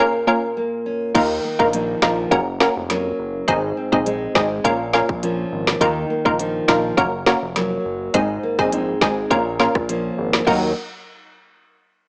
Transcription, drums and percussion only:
1.15 kick, closed hi-hat, crash
1.60 kick
1.73 closed hi-hat
2.02 kick, snare
2.32 kick, closed hi-hat
2.60 snare
2.90 snare, closed hi-hat
3.48 kick, closed hi-hat
3.93 kick
4.06 closed hi-hat
4.35 kick, snare
4.65 kick, closed hi-hat
4.93 snare
5.09 kick
5.23 closed hi-hat
5.67 snare
5.81 kick, closed hi-hat
6.26 kick
6.39 closed hi-hat
6.68 kick, snare
6.98 kick, closed hi-hat
7.26 snare
7.56 snare, closed hi-hat
8.14 kick, closed hi-hat
8.59 kick
8.72 closed hi-hat
9.01 kick, snare
9.31 kick, closed hi-hat
9.60 snare
9.75 kick, cross-stick
9.89 closed hi-hat
10.33 snare
10.47 kick, crash

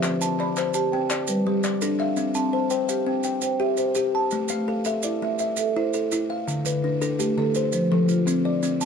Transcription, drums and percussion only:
0.03 clap, maracas
0.21 maracas
0.39 clap
0.56 clap, maracas
0.74 maracas
1.10 clap, maracas
1.27 maracas
1.63 clap, maracas
1.81 maracas
1.99 clap
2.16 maracas
2.35 maracas
2.70 maracas
2.89 maracas
3.23 maracas
3.42 maracas
3.77 maracas
3.95 maracas
4.31 maracas
4.48 maracas
4.85 maracas
5.03 maracas
5.39 maracas
5.57 maracas
5.93 maracas
6.12 maracas
6.48 maracas
6.65 maracas
7.02 maracas
7.20 maracas
7.55 maracas
7.72 maracas
8.09 maracas
8.27 maracas
8.63 maracas
8.81 maracas

